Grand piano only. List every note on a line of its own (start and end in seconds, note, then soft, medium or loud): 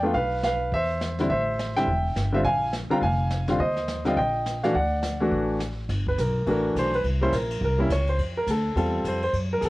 0.00 0.13 A3 medium
0.00 0.14 B3 medium
0.00 0.14 D4 medium
0.00 0.14 D5 medium
0.00 0.15 G5 loud
0.05 0.14 F4 medium
0.14 0.43 B4 medium
0.14 0.43 F5 loud
0.44 0.72 B4 medium
0.44 0.73 F5 loud
0.74 1.17 C5 medium
0.74 1.16 E5 loud
1.19 1.29 D3 medium
1.19 1.29 G3 medium
1.19 1.29 C4 medium
1.19 1.30 E4 medium
1.30 1.74 C5 medium
1.30 1.77 E5 loud
1.77 1.86 D3 medium
1.77 1.87 G3 medium
1.77 1.87 C4 medium
1.77 1.87 E4 medium
1.77 2.31 E5 medium
1.77 2.35 G5 loud
2.32 2.43 D3 medium
2.32 2.44 G3 medium
2.32 2.44 C4 medium
2.32 2.44 F4 medium
2.32 2.40 C5 medium
2.32 2.39 E5 medium
2.45 2.72 F5 medium
2.45 2.71 G#5 loud
2.90 3.00 D3 medium
2.90 3.01 G3 medium
2.90 3.01 C4 medium
2.90 3.01 F4 medium
2.90 2.97 G5 medium
2.90 2.96 A#5 loud
3.03 3.46 F5 medium
3.03 3.45 G#5 loud
3.48 3.58 D3 medium
3.48 3.58 G3 medium
3.48 3.59 C4 medium
3.48 3.59 F4 medium
3.60 4.03 C5 medium
3.60 4.07 D#5 medium
4.05 4.15 D3 medium
4.05 4.15 G3 medium
4.05 4.16 C4 medium
4.05 4.16 F4 medium
4.05 4.17 D#5 medium
4.05 4.16 G5 medium
4.17 4.61 D#5 medium
4.17 4.65 G5 loud
4.63 4.73 E3 medium
4.63 4.74 A3 medium
4.63 4.74 D4 medium
4.63 4.74 F#4 medium
4.63 4.74 D5 medium
4.63 4.75 F5 medium
4.75 5.57 D5 medium
4.75 5.57 F#5 medium
5.20 5.58 E3 medium
5.20 5.58 A3 medium
5.20 5.59 D4 medium
5.20 5.59 F#4 medium
6.08 6.18 B4 medium
6.20 6.46 A#4 medium
6.47 6.90 E3 medium
6.47 6.90 A3 medium
6.47 6.90 D4 medium
6.47 6.90 F#4 medium
6.47 6.75 A#4 medium
6.79 6.94 C5 loud
6.95 7.05 B4 medium
7.21 7.32 G3 medium
7.21 7.32 A#3 medium
7.21 7.32 C#4 medium
7.21 7.32 E4 medium
7.21 7.33 C5 loud
7.35 7.61 A#4 medium
7.64 7.90 A#4 medium
7.78 7.89 G3 medium
7.78 7.89 A#3 medium
7.78 7.89 C#4 medium
7.78 7.90 E4 medium
7.92 8.08 C#5 medium
8.09 8.19 C5 medium
8.37 8.48 A#4 medium
8.51 8.76 A4 medium
8.76 9.19 G3 medium
8.76 9.19 C4 medium
8.76 9.20 F4 medium
8.76 9.20 A4 medium
9.08 9.22 C5 medium
9.24 9.34 C5 medium
9.53 9.63 A#4 medium
9.61 9.63 G#4 medium
9.65 9.69 A4 medium